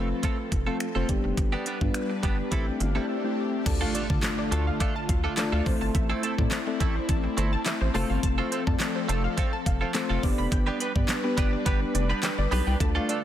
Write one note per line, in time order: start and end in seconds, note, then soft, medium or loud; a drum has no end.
0.00 0.13 F1 loud
0.00 1.07 F3 medium
0.00 0.45 A3 medium
0.00 0.45 C4 medium
0.00 1.05 C4 medium
0.00 0.46 F4 medium
0.00 1.07 A4 medium
0.00 0.46 B4 medium
0.10 muted clean electric guitar stroke soft
0.23 0.37 A3 medium
0.23 0.37 C4 loud
0.23 0.38 F4 medium
0.23 0.37 A4 loud
0.23 kick medium
0.23 closed hi-hat medium
0.38 muted clean electric guitar stroke soft
0.51 0.70 F1 medium
0.51 muted clean electric guitar stroke soft
0.51 kick loud
0.51 closed hi-hat medium
0.67 0.86 A3 medium
0.67 0.77 A3 medium
0.67 0.87 C4 medium
0.67 0.77 C4 medium
0.67 0.87 F4 medium
0.67 0.77 F4 medium
0.67 0.76 A4 medium
0.67 0.87 A4 medium
0.80 finger snap loud
0.80 closed hi-hat medium
0.95 1.04 F1 medium
0.95 1.09 A3 medium
0.95 1.08 A3 medium
0.95 1.09 C4 medium
0.95 1.08 C4 medium
0.95 1.09 F4 medium
0.95 1.08 F4 medium
0.95 1.08 A4 medium
0.95 1.09 C5 medium
1.09 1.19 G1 loud
1.09 1.66 G3 medium
1.09 2.50 G3 medium
1.09 1.66 B3 medium
1.09 1.66 D4 medium
1.09 2.51 D4 medium
1.09 1.66 G4 loud
1.09 2.51 B4 medium
1.09 muted clean electric guitar stroke soft
1.09 kick medium
1.09 closed hi-hat medium
1.24 1.33 F1 medium
1.24 muted clean electric guitar stroke soft
1.37 1.56 G1 loud
1.37 muted clean electric guitar stroke soft
1.37 kick loud
1.37 closed hi-hat medium
1.37 swell medium
1.52 1.65 G3 medium
1.52 1.66 B3 medium
1.52 1.65 D4 medium
1.52 1.65 G4 medium
1.66 1.77 G3 medium
1.66 1.77 B3 medium
1.66 1.78 D4 medium
1.66 1.78 G4 medium
1.66 closed hi-hat medium
1.81 1.90 G2 loud
1.81 2.11 G3 medium
1.81 2.11 B3 medium
1.81 2.11 D4 medium
1.81 2.12 F4 loud
1.81 muted clean electric guitar stroke soft
1.81 kick medium
1.94 finger snap loud
1.94 closed hi-hat medium
2.10 muted clean electric guitar stroke soft
2.23 2.42 G1 medium
2.23 2.37 G3 medium
2.23 2.52 G3 medium
2.23 2.52 B3 medium
2.23 2.37 B3 medium
2.23 2.52 D4 medium
2.23 2.38 D4 medium
2.23 2.51 G4 medium
2.23 2.37 G4 medium
2.23 2.50 B5 medium
2.23 kick loud
2.23 closed hi-hat medium
2.38 muted clean electric guitar stroke soft
2.51 2.70 A1 loud
2.51 2.66 G3 medium
2.51 2.86 A3 medium
2.51 3.65 A3 medium
2.51 2.86 C4 medium
2.51 3.65 C4 medium
2.51 2.66 C4 medium
2.51 2.86 E4 medium
2.51 2.66 E4 medium
2.51 3.65 G4 medium
2.51 2.87 G4 loud
2.51 2.65 A4 medium
2.51 2.66 A5 medium
2.51 kick loud
2.51 closed hi-hat medium
2.67 2.79 G5 medium
2.67 muted clean electric guitar stroke soft
2.80 2.99 G1 loud
2.80 3.07 F5 medium
2.80 muted clean electric guitar stroke medium
2.80 closed hi-hat medium
2.95 3.06 G3 medium
2.95 3.15 A3 medium
2.95 3.15 C4 medium
2.95 3.06 C4 medium
2.95 3.15 E4 medium
2.95 3.05 E4 medium
2.95 3.15 G4 medium
2.95 3.05 A4 medium
3.09 3.62 E5 medium
3.24 3.54 A3 medium
3.24 3.54 C4 medium
3.24 3.54 E4 medium
3.24 3.54 G4 medium
3.66 3.85 D2 loud
3.66 5.64 D3 medium
3.66 3.96 A3 medium
3.66 7.91 A3 medium
3.66 3.96 D4 medium
3.66 3.97 F4 medium
3.66 5.64 F4 medium
3.66 3.97 A4 medium
3.66 3.97 D5 loud
3.66 3.75 A5 loud
3.66 muted clean electric guitar stroke soft
3.66 kick loud
3.66 closed hi-hat medium
3.66 crash loud
3.66 impact medium
3.81 3.93 A3 medium
3.81 3.94 D4 medium
3.81 3.94 F4 medium
3.81 3.93 A4 medium
3.81 3.89 F5 medium
3.94 4.05 A3 medium
3.94 4.06 D4 medium
3.94 4.06 F4 medium
3.94 4.06 A4 medium
3.94 4.04 D5 medium
3.94 closed hi-hat medium
4.10 4.19 D3 loud
4.10 4.90 A3 medium
4.10 4.90 D4 medium
4.10 4.90 F4 medium
4.10 4.90 A4 medium
4.10 4.90 D5 loud
4.10 4.18 A5 medium
4.10 kick loud
4.23 snare loud
4.23 clap loud
4.23 closed hi-hat medium
4.38 4.46 D5 medium
4.38 muted clean electric guitar stroke soft
4.51 4.70 D2 medium
4.51 4.66 A3 medium
4.51 4.66 D4 medium
4.51 4.66 F4 medium
4.51 4.66 A4 medium
4.51 4.61 A5 loud
4.51 closed hi-hat medium
4.67 4.75 F5 medium
4.67 muted clean electric guitar stroke soft
4.80 4.94 A3 medium
4.80 4.95 D4 medium
4.80 4.95 F4 loud
4.80 4.94 A4 loud
4.80 4.90 D5 medium
4.80 kick loud
4.80 closed hi-hat medium
4.95 5.04 A5 loud
4.95 muted clean electric guitar stroke medium
5.09 5.28 D2 loud
5.09 5.18 F5 medium
5.09 muted clean electric guitar stroke soft
5.09 kick loud
5.09 closed hi-hat medium
5.24 5.35 A3 medium
5.24 5.34 D4 medium
5.24 5.34 F4 medium
5.24 5.34 A4 medium
5.37 5.65 A3 loud
5.37 5.66 D4 medium
5.37 5.66 F4 medium
5.37 5.65 A4 medium
5.37 5.66 D5 loud
5.37 5.47 A5 loud
5.37 muted clean electric guitar stroke soft
5.37 snare medium
5.37 clap loud
5.37 closed hi-hat loud
5.52 5.61 D2 medium
5.52 5.65 A3 medium
5.52 5.66 D4 medium
5.52 5.65 F4 medium
5.52 5.65 A4 medium
5.52 5.61 F5 medium
5.66 5.76 A1 loud
5.66 6.23 A3 medium
5.66 6.23 C4 medium
5.66 10.19 C4 medium
5.66 6.23 E4 medium
5.66 7.92 E4 medium
5.66 6.23 A4 medium
5.66 5.75 C5 medium
5.66 6.23 C5 loud
5.66 muted clean electric guitar stroke soft
5.66 kick medium
5.66 open hi-hat medium
5.81 5.90 G1 loud
5.81 5.89 A5 loud
5.81 muted clean electric guitar stroke medium
5.95 6.13 A1 loud
5.95 6.04 E5 medium
5.95 muted clean electric guitar stroke soft
5.95 kick loud
5.95 closed hi-hat medium
6.10 6.22 A3 medium
6.10 6.22 C4 medium
6.10 6.22 E4 medium
6.10 6.22 A4 medium
6.10 6.18 C5 medium
6.23 6.34 A3 medium
6.23 6.34 C4 medium
6.23 6.35 E4 medium
6.23 6.35 A4 medium
6.23 6.32 A5 medium
6.23 closed hi-hat medium
6.38 6.47 A2 loud
6.38 6.58 A3 medium
6.38 6.58 C4 medium
6.38 6.58 E4 medium
6.38 6.58 A4 medium
6.38 6.58 D5 loud
6.38 muted clean electric guitar stroke medium
6.38 kick medium
6.51 6.61 C5 medium
6.51 snare loud
6.51 clap loud
6.51 closed hi-hat medium
6.67 7.47 A3 medium
6.67 7.47 C4 medium
6.67 7.47 E4 medium
6.67 7.48 A4 medium
6.67 7.48 D5 loud
6.67 muted clean electric guitar stroke medium
6.80 6.99 A1 medium
6.80 6.94 A3 medium
6.80 6.95 C4 medium
6.80 6.95 E4 medium
6.80 6.94 A4 medium
6.80 6.89 E5 medium
6.80 kick loud
6.80 closed hi-hat medium
6.95 7.04 C5 medium
6.95 muted clean electric guitar stroke soft
7.09 7.28 A1 loud
7.09 7.18 A5 loud
7.09 muted clean electric guitar stroke soft
7.09 kick loud
7.09 closed hi-hat medium
7.24 muted clean electric guitar stroke soft
7.37 7.56 G1 medium
7.37 7.51 A3 medium
7.37 7.52 C4 medium
7.37 7.52 E4 loud
7.37 7.51 A4 loud
7.37 7.46 C5 medium
7.37 closed hi-hat medium
7.52 7.61 A5 loud
7.52 muted clean electric guitar stroke medium
7.66 7.75 E5 medium
7.66 muted clean electric guitar stroke medium
7.66 snare loud
7.66 clap loud
7.66 closed hi-hat loud
7.81 7.90 A1 medium
7.81 7.89 C5 medium
7.81 muted clean electric guitar stroke medium
7.94 8.05 F1 loud
7.94 10.21 F3 medium
7.94 8.08 A3 medium
7.94 8.52 A3 medium
7.94 8.52 C4 medium
7.94 8.09 C4 medium
7.94 8.52 F4 medium
7.94 8.09 F4 medium
7.94 10.21 A4 medium
7.94 8.52 A4 medium
7.94 8.08 A4 loud
7.94 8.52 C5 loud
7.94 8.04 A5 loud
7.94 open hi-hat medium
8.09 8.19 G1 loud
8.09 8.20 A3 medium
8.09 8.20 C4 medium
8.09 8.20 F4 medium
8.09 8.19 A4 medium
8.09 8.18 F5 medium
8.23 8.42 F1 loud
8.23 8.32 A5 loud
8.23 kick loud
8.23 closed hi-hat medium
8.38 8.50 A3 medium
8.38 8.51 C4 medium
8.38 8.51 F4 medium
8.38 8.51 A4 medium
8.38 8.46 F5 medium
8.51 8.63 A3 medium
8.51 8.63 C4 medium
8.51 8.63 F4 medium
8.51 8.63 A4 medium
8.51 8.61 C5 medium
8.51 closed hi-hat medium
8.67 8.76 F2 loud
8.67 9.47 A3 medium
8.67 9.47 C4 medium
8.67 9.47 F4 medium
8.67 9.48 A4 medium
8.67 9.48 D5 loud
8.67 8.75 A5 loud
8.67 muted clean electric guitar stroke medium
8.67 kick medium
8.80 snare loud
8.80 clap loud
8.80 closed hi-hat medium
8.95 9.03 C5 medium
8.95 muted clean electric guitar stroke medium
9.08 9.28 F1 medium
9.08 9.23 A3 loud
9.08 9.23 C4 loud
9.08 9.23 F4 loud
9.08 9.23 A4 loud
9.08 9.18 A5 medium
9.08 closed hi-hat medium
9.24 9.32 F5 medium
9.24 muted clean electric guitar stroke soft
9.37 9.51 A3 medium
9.37 9.52 C4 loud
9.37 9.52 F4 loud
9.37 9.51 A4 loud
9.37 9.47 C5 medium
9.37 kick loud
9.37 closed hi-hat medium
9.52 9.61 A5 loud
9.52 muted clean electric guitar stroke medium
9.66 9.85 F1 loud
9.66 9.75 F5 medium
9.66 muted clean electric guitar stroke soft
9.66 kick loud
9.66 closed hi-hat medium
9.81 9.92 A3 medium
9.81 9.91 C4 medium
9.81 9.91 F4 medium
9.81 9.91 A4 medium
9.94 10.23 A3 loud
9.94 10.23 C4 medium
9.94 10.23 F4 medium
9.94 10.23 A4 medium
9.94 10.23 C5 loud
9.94 10.04 A5 medium
9.94 snare loud
9.94 clap loud
9.94 closed hi-hat medium
10.09 10.19 F1 medium
10.09 10.23 A3 medium
10.09 10.23 C4 medium
10.09 10.22 F4 medium
10.09 10.22 A4 medium
10.09 10.18 F5 medium
10.23 10.33 G1 loud
10.23 12.78 G3 medium
10.23 10.80 B3 medium
10.23 10.80 D4 medium
10.23 12.78 D4 medium
10.23 10.80 G4 medium
10.23 10.80 B4 medium
10.23 12.78 B4 medium
10.23 10.32 D5 medium
10.23 10.81 D5 loud
10.23 muted clean electric guitar stroke soft
10.23 kick medium
10.23 open hi-hat medium
10.38 10.47 F1 loud
10.38 10.46 B5 loud
10.38 muted clean electric guitar stroke medium
10.52 10.70 G1 loud
10.52 10.61 G5 medium
10.52 muted clean electric guitar stroke soft
10.52 kick loud
10.52 closed hi-hat medium
10.67 10.79 B3 medium
10.67 10.79 D4 medium
10.67 10.80 G4 medium
10.67 10.79 B4 medium
10.67 10.75 D5 medium
10.80 10.91 B3 medium
10.80 10.91 D4 medium
10.80 10.92 G4 medium
10.80 10.92 B4 medium
10.80 10.89 B5 medium
10.80 closed hi-hat medium
10.95 11.04 G2 loud
10.95 11.15 B3 medium
10.95 11.15 D4 medium
10.95 11.15 G4 medium
10.95 11.15 B4 medium
10.95 11.15 D5 loud
10.95 kick medium
11.08 11.18 D5 medium
11.08 snare loud
11.08 clap loud
11.08 closed hi-hat medium
11.24 12.04 B3 medium
11.24 12.05 D4 medium
11.24 12.05 G4 medium
11.24 12.05 B4 medium
11.24 12.05 D5 loud
11.24 muted clean electric guitar stroke soft
11.37 11.56 G1 loud
11.37 11.51 B3 medium
11.37 11.52 D4 medium
11.37 11.52 G4 medium
11.37 11.51 B4 medium
11.37 11.46 G5 medium
11.37 kick loud
11.37 closed hi-hat medium
11.52 11.61 D5 medium
11.52 muted clean electric guitar stroke medium
11.66 11.85 G1 loud
11.66 11.80 B3 medium
11.66 11.80 D4 medium
11.66 11.80 G4 medium
11.66 11.80 B4 medium
11.66 11.75 B5 loud
11.66 kick loud
11.66 closed hi-hat medium
11.81 muted clean electric guitar stroke soft
11.94 12.13 F1 loud
11.94 12.04 D5 medium
11.94 muted clean electric guitar stroke medium
11.94 closed hi-hat medium
12.09 12.20 B3 medium
12.09 12.20 D4 medium
12.09 12.20 G4 medium
12.09 12.19 B4 medium
12.09 12.18 B5 loud
12.23 12.32 G5 medium
12.23 snare loud
12.23 clap loud
12.23 closed hi-hat loud
12.38 12.47 G1 medium
12.38 12.46 D5 medium
12.38 muted clean electric guitar stroke soft
12.51 12.62 B1 loud
12.51 12.66 B3 medium
12.51 12.66 D4 loud
12.51 12.66 G4 loud
12.51 12.65 B4 loud
12.51 12.61 B5 loud
12.51 open hi-hat medium
12.66 12.76 C2 medium
12.66 12.77 B3 medium
12.66 12.77 D4 medium
12.66 12.77 G4 medium
12.66 12.76 B4 medium
12.66 12.75 G5 medium
12.80 12.99 D2 loud
12.80 13.24 D3 medium
12.80 13.11 A3 medium
12.80 13.24 A3 medium
12.80 13.11 D4 medium
12.80 13.11 F4 medium
12.80 13.24 F4 medium
12.80 13.11 A4 medium
12.80 13.11 D5 loud
12.80 12.89 A5 loud
12.80 muted clean electric guitar stroke soft
12.80 kick loud
12.80 closed hi-hat medium
12.95 13.07 A3 medium
12.95 13.08 D4 medium
12.95 13.08 F4 medium
12.95 13.08 A4 medium
12.95 13.03 F5 medium
13.09 13.20 A3 medium
13.09 13.20 D4 medium
13.09 13.20 F4 medium
13.09 13.21 A4 medium
13.09 13.18 D5 medium
13.09 closed hi-hat medium